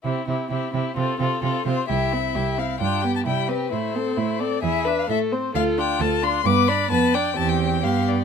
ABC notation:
X:1
M:2/4
L:1/16
Q:1/4=131
K:C
V:1 name="Violin"
G2 G2 G2 G2 | A2 A2 A2 c2 | e6 f2 | g3 a g2 B2 |
c6 d2 | e3 f e2 z2 | f2 g2 a2 c'2 | d'2 b2 a2 g2 |
a g3 f2 d2 |]
V:2 name="Violin"
E2 E2 E2 E2 | F2 F2 F2 F2 | G2 E2 G2 E2 | F2 G2 E2 G2 |
E2 A2 E2 A2 | ^G2 B2 A2 c2 | A2 F2 A2 F2 | B2 d2 B2 d2 |
G4 G4 |]
V:3 name="Viola"
C2 C2 C2 C2 | C2 C2 C2 C2 | E2 C2 E2 C2 | D2 B,2 G,2 C2 |
A,2 C2 A,2 C2 | E2 D2 A,2 C2 | F2 D2 F2 D2 | B,2 D2 B,2 D2 |
C4 B,4 |]
V:4 name="Cello" clef=bass
C,2 C,2 C,2 C,2 | C,2 C,2 C,2 C,2 | C,,4 C,,4 | G,,4 C,4 |
A,,4 A,,4 | E,,4 A,,4 | D,,4 D,,4 | G,,4 F,,4 |
E,,4 G,,4 |]